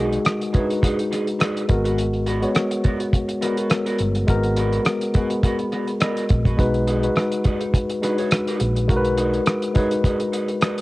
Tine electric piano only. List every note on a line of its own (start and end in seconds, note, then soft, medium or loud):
0.00 0.53 G#3 medium
0.00 0.60 D#4 medium
0.00 0.54 F#4 medium
0.00 0.24 G#4 loud
0.00 1.71 A#4 medium
0.53 1.29 G#3 medium
0.53 0.61 D4 soft
0.53 1.30 F#4 medium
0.53 1.30 B4 medium
0.60 1.33 D#4 medium
1.68 2.26 G#3 medium
1.68 2.27 B3 medium
1.68 2.27 F#4 medium
1.68 2.27 A#4 medium
2.41 3.07 G#3 medium
2.41 3.07 B3 medium
2.41 3.07 F#4 medium
2.41 3.08 C#5 medium
3.41 3.98 G#3 medium
3.41 3.98 B3 medium
3.41 3.98 F#4 medium
3.41 3.99 A#4 medium
4.27 4.84 G#3 medium
4.27 4.84 B3 medium
4.27 4.85 F#4 medium
4.27 4.85 A#4 loud
5.14 5.90 G#3 medium
5.14 5.90 B3 medium
5.14 5.91 F#4 medium
5.14 5.91 G#4 medium
6.01 6.55 D#5 medium
6.57 6.86 G#3 medium
6.57 6.86 D#4 medium
6.57 6.87 F#4 medium
6.57 6.87 B4 medium
7.02 7.67 G#3 medium
7.02 7.68 D#4 medium
7.02 7.68 F#4 medium
7.02 7.68 B4 medium
8.01 8.58 G#3 medium
8.01 8.09 D4 soft
8.01 8.59 F#4 medium
8.01 8.59 B4 medium
8.09 8.62 D#4 medium
8.88 9.44 G#3 medium
8.88 9.45 D#4 medium
8.88 9.45 F#4 medium
8.88 8.97 A#4 medium
8.96 9.49 B4 loud
9.74 10.50 G#3 medium
9.74 10.51 D#4 medium
9.74 10.51 F#4 medium
9.74 10.52 B4 medium